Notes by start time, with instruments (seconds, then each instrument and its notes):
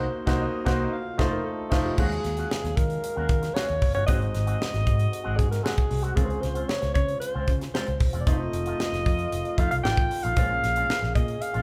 Already playing: french horn section C3 A#3 D#4, alto saxophone C5
0.26 fingered electric bass C2, grand piano A#3 D#4 F#4 C5, clean electric guitar A#3 D#4 F#4, kick, snare
0.41 alto saxophone D#5
0.65 fingered electric bass C2, grand piano A#3 D#4 F#4 C5, clean electric guitar A#3 D#4 F#4, kick, snare
0.93 french horn section D#3 A3 F4, alto saxophone F5
1.18 fingered electric bass F1, grand piano A3 D#4 F4 C5, clean electric guitar A3 D#4 F4, alto saxophone A4, kick, snare
1.32 alto saxophone A#4
1.45 alto saxophone A4
1.70 fingered electric bass F1, grand piano A3 D#4 F4 C5, clean electric guitar A3 D#4 F4, kick, snare, crash
1.85 alto saxophone G4
1.97 fingered electric bass D#2, french horn section C#3 F#3 G#3 F5, grand piano G#3 D#4 F4 F#4 C#5, clean electric guitar G#3 C#4 F#4, alto saxophone G#4, kick, crash
2.11 muted clean electric guitar stroke, closed hi-hat
2.24 fingered electric bass D#2, muted clean electric guitar stroke, snare, closed hi-hat
2.37 clean electric guitar G#3 C#4 F#4, closed hi-hat
2.51 muted clean electric guitar stroke, snare
2.64 fingered electric bass D#2, muted clean electric guitar stroke, snare, closed hi-hat
2.77 fingered electric bass D#3, alto saxophone A#4, kick, closed hi-hat
2.90 muted clean electric guitar stroke, closed hi-hat
3.03 muted clean electric guitar stroke, closed hi-hat
3.16 fingered electric bass D#2, clean electric guitar G#3 C#4 F#4
3.29 fingered electric bass D#3, muted clean electric guitar stroke, kick, closed hi-hat
3.42 muted clean electric guitar stroke, snare, closed hi-hat
3.54 clean electric guitar G#3 C#4 F#4, alto saxophone C#5, snare
3.68 fingered electric bass D#2, muted clean electric guitar stroke, closed hi-hat
3.81 fingered electric bass F#1, muted clean electric guitar stroke, kick, open hi-hat
3.94 fingered electric bass G1, clean electric guitar G#3 C#4 F#4, alto saxophone C#5, closed hi-hat
4.06 fingered electric bass G#1, french horn section C3 F#4, clean electric guitar G#3 C4 F#4, grand piano G#3 C4 D#4 F#4 C5, alto saxophone D#5, kick, closed hi-hat
4.21 muted clean electric guitar stroke, closed hi-hat
4.34 fingered electric bass G#1, muted clean electric guitar stroke, snare, closed hi-hat
4.47 clean electric guitar G#3 C4 F#4, closed hi-hat
4.60 muted clean electric guitar stroke, snare
4.73 fingered electric bass G#1, muted clean electric guitar stroke, snare, closed hi-hat
4.87 fingered electric bass G#2, kick, closed hi-hat
4.99 muted clean electric guitar stroke, closed hi-hat
5.11 muted clean electric guitar stroke, closed hi-hat
5.24 fingered electric bass G#1, clean electric guitar G#3 C4 F#4
5.37 fingered electric bass G#2, alto saxophone G#4, muted clean electric guitar stroke, kick, closed hi-hat
5.51 alto saxophone A#4, muted clean electric guitar stroke, snare, closed hi-hat
5.63 clean electric guitar G#3 C4 F#4, alto saxophone G#4, snare
5.76 muted clean electric guitar stroke, kick, closed hi-hat
5.90 fingered electric bass C2, muted clean electric guitar stroke, open hi-hat
6.02 clean electric guitar G#3 C4 F#4, alto saxophone F#4, closed hi-hat
6.15 fingered electric bass C#2, french horn section C#3 F4 C5, clean electric guitar G#3 C4 F4, grand piano G#3 C4 C#4 F4 A#4, alto saxophone G#4, kick, closed hi-hat
6.25 grand piano C5, muted clean electric guitar stroke
6.30 closed hi-hat
6.41 fingered electric bass C#2, alto saxophone C5, muted clean electric guitar stroke, snare, closed hi-hat
6.55 clean electric guitar G#3 C4 F4, closed hi-hat
6.68 alto saxophone C#5, muted clean electric guitar stroke, snare
6.82 fingered electric bass C#2, muted clean electric guitar stroke, snare, closed hi-hat
6.94 fingered electric bass C#3, alto saxophone C#5, kick, closed hi-hat
7.08 muted clean electric guitar stroke, closed hi-hat
7.20 alto saxophone C5, muted clean electric guitar stroke, closed hi-hat
7.34 fingered electric bass C#2, clean electric guitar G#3 C4 F4
7.48 fingered electric bass C#3, muted clean electric guitar stroke, kick, closed hi-hat
7.61 muted clean electric guitar stroke, snare, closed hi-hat
7.74 clean electric guitar G#3 C4 F4, alto saxophone C5, snare
7.87 fingered electric bass C#2, muted clean electric guitar stroke, closed hi-hat
8.00 fingered electric bass D#1, muted clean electric guitar stroke, kick, open hi-hat
8.13 fingered electric bass E1, clean electric guitar G#3 C4 F4, closed hi-hat
8.21 alto saxophone D5
8.26 fingered electric bass F1, french horn section D#3 A3 F4, clean electric guitar A3 D#4 F4, grand piano A3 C4 D#4 F4 C5, alto saxophone D#5, kick, closed hi-hat
8.40 muted clean electric guitar stroke
8.53 fingered electric bass F1, muted clean electric guitar stroke, closed hi-hat
8.66 clean electric guitar A3 D#4 F4, closed hi-hat
8.80 muted clean electric guitar stroke, snare
8.93 fingered electric bass F1, muted clean electric guitar stroke, snare, closed hi-hat
9.06 fingered electric bass F2, kick, closed hi-hat
9.19 muted clean electric guitar stroke, closed hi-hat
9.32 fingered electric bass F1, closed hi-hat
9.45 muted clean electric guitar stroke, closed hi-hat
9.58 fingered electric bass F2, clean electric guitar A3 D#4 F4, alto saxophone F5, kick, closed hi-hat
9.71 fingered electric bass C2, alto saxophone F5, muted clean electric guitar stroke, closed hi-hat
9.84 fingered electric bass A1, clean electric guitar A3 D#4 F4, alto saxophone G5, snare
9.97 fingered electric bass A1, muted clean electric guitar stroke, kick, closed hi-hat
10.11 muted clean electric guitar stroke, open hi-hat
10.23 fingered electric bass A#1, clean electric guitar A3 D#4 F4, alto saxophone F5, closed hi-hat
10.36 fingered electric bass A#1, french horn section C#3 A#3 G#4, clean electric guitar G#3 C#4 F4, grand piano A#3 C#4 F4 G#4 C5, kick, closed hi-hat
10.45 grand piano C#5
10.50 muted clean electric guitar stroke
10.63 fingered electric bass A#1, muted clean electric guitar stroke, snare, closed hi-hat
10.76 clean electric guitar G#3 C#4 F4, closed hi-hat
10.89 muted clean electric guitar stroke, snare
11.02 fingered electric bass A#1, muted clean electric guitar stroke, snare
11.15 fingered electric bass A#2, alto saxophone D#5, kick, closed hi-hat
11.28 muted clean electric guitar stroke, closed hi-hat
11.41 alto saxophone F5, muted clean electric guitar stroke, closed hi-hat
11.53 fingered electric bass A#1, clean electric guitar G#3 C#4 F4, closed hi-hat